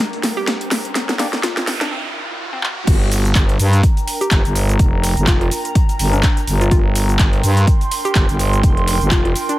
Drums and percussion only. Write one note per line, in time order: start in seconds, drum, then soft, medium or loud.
0.13 closed hi-hat soft
0.23 snare medium
0.23 closed hi-hat medium
0.23 open hi-hat loud
0.47 snare medium
0.47 snare loud
0.47 closed hi-hat medium
0.61 closed hi-hat medium
0.71 snare medium
0.71 closed hi-hat medium
0.71 open hi-hat loud
0.85 closed hi-hat soft
0.95 snare medium
0.95 closed hi-hat medium
1.09 snare medium
1.09 closed hi-hat soft
1.19 snare medium
1.19 snare soft
1.19 closed hi-hat medium
1.19 open hi-hat loud
1.33 snare medium
1.33 closed hi-hat soft
1.43 snare medium
1.43 snare loud
1.43 closed hi-hat medium
1.57 snare medium
1.57 closed hi-hat soft
1.67 snare loud
1.67 closed hi-hat medium
1.67 open hi-hat loud
1.81 snare medium
1.81 closed hi-hat medium
2.63 clap medium
2.87 kick loud
2.87 closed hi-hat medium
2.87 crash loud
2.87 cabasa soft
3.12 closed hi-hat medium
3.12 open hi-hat loud
3.12 cabasa medium
3.25 closed hi-hat soft
3.25 cabasa soft
3.35 kick loud
3.35 snare loud
3.35 clap loud
3.35 closed hi-hat medium
3.35 cabasa soft
3.49 closed hi-hat soft
3.59 closed hi-hat medium
3.59 open hi-hat medium
3.59 cabasa medium
3.73 closed hi-hat medium
3.73 closed hi-hat soft
3.73 cabasa soft
3.83 kick loud
3.83 closed hi-hat medium
3.83 cabasa soft
3.97 closed hi-hat soft
3.97 cabasa soft
4.07 closed hi-hat medium
4.07 open hi-hat loud
4.07 cabasa medium
4.21 closed hi-hat soft
4.21 cabasa soft
4.31 kick loud
4.31 snare loud
4.31 clap loud
4.31 closed hi-hat medium
4.31 cabasa soft
4.45 closed hi-hat medium
4.45 cabasa soft
4.56 closed hi-hat medium
4.56 open hi-hat medium
4.56 cabasa medium
4.69 closed hi-hat soft
4.69 cabasa soft
4.79 kick loud
4.79 closed hi-hat medium
4.79 cabasa soft
5.03 snare soft
5.03 closed hi-hat medium
5.03 open hi-hat loud
5.03 cabasa medium
5.17 closed hi-hat soft
5.17 cabasa soft
5.27 kick loud
5.27 snare loud
5.27 clap loud
5.27 closed hi-hat medium
5.27 cabasa soft
5.41 closed hi-hat soft
5.51 closed hi-hat medium
5.51 open hi-hat medium
5.51 cabasa medium
5.65 closed hi-hat medium
5.65 cabasa soft
5.75 kick loud
5.75 closed hi-hat medium
5.75 cabasa soft
5.89 closed hi-hat soft
5.89 cabasa soft
5.99 open hi-hat loud
5.99 open hi-hat medium
5.99 cabasa medium
6.13 closed hi-hat soft
6.13 cabasa soft
6.23 kick loud
6.23 snare loud
6.23 clap loud
6.23 closed hi-hat medium
6.23 cabasa soft
6.37 closed hi-hat medium
6.37 cabasa soft
6.47 closed hi-hat medium
6.47 open hi-hat loud
6.47 cabasa medium
6.61 closed hi-hat soft
6.61 cabasa soft
6.71 kick loud
6.71 closed hi-hat medium
6.71 cabasa soft
6.95 closed hi-hat medium
6.95 open hi-hat loud
6.95 cabasa medium
7.09 closed hi-hat soft
7.09 cabasa soft
7.19 kick loud
7.19 snare loud
7.19 clap loud
7.19 closed hi-hat medium
7.19 cabasa soft
7.33 closed hi-hat soft
7.43 closed hi-hat medium
7.43 open hi-hat loud
7.43 cabasa medium
7.57 closed hi-hat soft
7.57 closed hi-hat medium
7.57 cabasa soft
7.67 kick loud
7.67 closed hi-hat medium
7.67 cabasa soft
7.81 closed hi-hat soft
7.81 cabasa soft
7.91 closed hi-hat medium
7.91 open hi-hat loud
7.91 cabasa medium
8.05 closed hi-hat soft
8.05 cabasa soft
8.15 kick loud
8.15 snare loud
8.15 clap loud
8.15 closed hi-hat medium
8.15 cabasa soft
8.29 closed hi-hat medium
8.29 cabasa soft
8.39 closed hi-hat medium
8.39 open hi-hat loud
8.39 cabasa medium
8.53 closed hi-hat soft
8.53 cabasa soft
8.63 kick loud
8.63 closed hi-hat medium
8.63 cabasa soft
8.77 closed hi-hat soft
8.87 snare soft
8.87 closed hi-hat medium
8.87 open hi-hat loud
8.87 cabasa medium
9.01 closed hi-hat soft
9.01 cabasa soft
9.11 kick loud
9.11 snare loud
9.11 clap loud
9.11 closed hi-hat medium
9.11 cabasa soft
9.25 closed hi-hat soft
9.35 closed hi-hat medium
9.35 open hi-hat loud
9.35 cabasa medium
9.49 closed hi-hat medium
9.49 cabasa soft